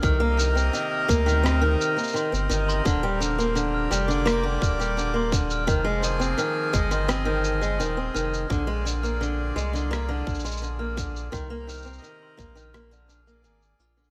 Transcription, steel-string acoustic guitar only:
\new Staff \with { instrumentName = "Steel-string acoustic guitar" } { \clef bass \time 4/4 \key f \dorian \tempo 4 = 85 ees16 bes16 ees16 c'16 ees8 bes16 ees16 c'16 ees8 bes16 ees16 c'16 ees8 | d16 g16 d16 bes16 d8 g16 d16 bes16 d8 g16 d16 bes16 d8 | ees16 aes16 ees16 c'16 ees8 aes16 ees16 c'16 ees8 aes16 ees16 c'16 ees8 | d16 aes16 d16 bes16 d8 aes16 d16 bes16 d8 aes16 d16 bes16 d8 |
ees16 bes16 ees16 c'16 ees8 bes16 ees16 bes16 d16 d'16 bes16 bes16 r16 f'16 d16 | }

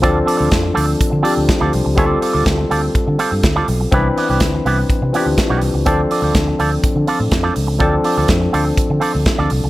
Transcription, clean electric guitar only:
\new Staff \with { instrumentName = "Clean electric guitar" } { \time 4/4 \key d \dorian \tempo 4 = 124 <c' f' a' d''>16 r16 <c' f' a' d''>16 <c' f' a' d''>16 r8 <c' f' a' d''>16 r8. <c' f' a' d''>16 r8 <c' f' a' d''>16 r8 | <c' f' a' d''>8 <c' f' a' d''>16 <c' f' a' d''>16 r8 <c' f' a' d''>16 r8. <c' f' a' d''>16 r8 <c' f' a' d''>16 r8 | <b e' g' d''>16 r16 <b e' g' d''>16 <b e' g' d''>16 r8 <b e' g' d''>16 r8. <b e' g' d''>16 r8 <b e' g' d''>8 r16 | <c' f' a' d''>16 r16 <c' f' a' d''>16 <c' f' a' d''>16 r8 <c' f' a' d''>16 r8. <c' f' a' d''>16 r8 <c' f' a' d''>16 r8 |
<c' f' a' d''>16 r16 <c' f' a' d''>16 <c' f' a' d''>16 r8 <c' f' a' d''>16 r8. <c' f' a' d''>16 r8 <c' f' a' d''>16 r8 | }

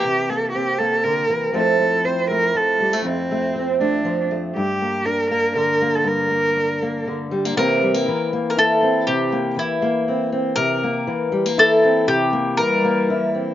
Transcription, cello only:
\new Staff \with { instrumentName = "Cello" } { \time 3/4 \key c \mixolydian \tempo 4 = 120 g'8 a'8 g'8 a'8 bes'8. r16 | a'4 c''8 bes'8 a'4 | c'4. d'4 r8 | g'4 bes'8 bes'8 bes'8. a'16 |
bes'2 r4 | r2. | r2. | r2. |
r4 g4. r8 | }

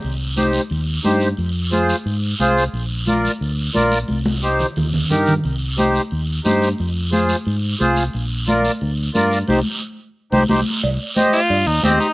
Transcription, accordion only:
\new Staff \with { instrumentName = "Accordion" } { \time 4/4 \key c \minor \tempo 4 = 178 r4 <ees' g' c''>8 r4. <ees' g' c''>8 r8 | r4 <f' aes' c''>8 r4. <f' aes' c''>8 r8 | r4 <f' bes' d''>8 r4. <f' bes' d''>8 r8 | r4 <ees' g' c''>8 r4. <ees' g' bes'>8 r8 |
r4 <ees' g' c''>8 r4. <ees' g' c''>8 r8 | r4 <f' aes' c''>8 r4. <f' aes' c''>8 r8 | r4 <f' bes' d''>8 r4. <f' bes' d''>8 r8 | <ees' g' c''>8 r2 <ees' g' c''>8 <ees' g' c''>8 r8 |
r4 <g' c'' ees''>8 r4. <g' c'' ees''>8 r8 | }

